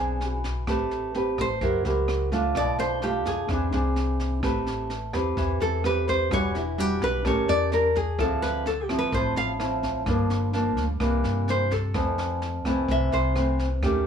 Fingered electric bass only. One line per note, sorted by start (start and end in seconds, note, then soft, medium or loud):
0.00 0.67 B1 medium
0.67 1.34 A1 medium
1.38 1.60 A1 medium
1.61 1.83 F#1 medium
1.84 2.55 C#2 medium
2.55 3.25 B1 loud
3.25 3.47 F2 medium
3.49 3.71 E2 medium
3.72 4.39 C2 medium
4.43 5.13 A1 loud
5.13 5.35 E2 medium
5.37 5.59 E2 medium
5.61 6.32 E2 medium
6.31 7.02 E1 medium
7.02 7.23 B1 medium
7.25 7.47 A1 medium
7.49 8.19 E2 medium
8.19 8.89 D2 loud
8.89 9.11 A1 medium
9.12 9.34 A1 medium
9.36 10.08 A1 medium
10.06 10.77 G1 loud
10.77 10.99 D2 medium
11.00 11.22 C2 medium
11.24 11.96 G2 medium
11.94 12.65 F2 medium
12.65 12.87 C2 medium
12.88 13.10 C2 medium
13.12 13.82 C2 medium
13.82 14.07 D#2 loud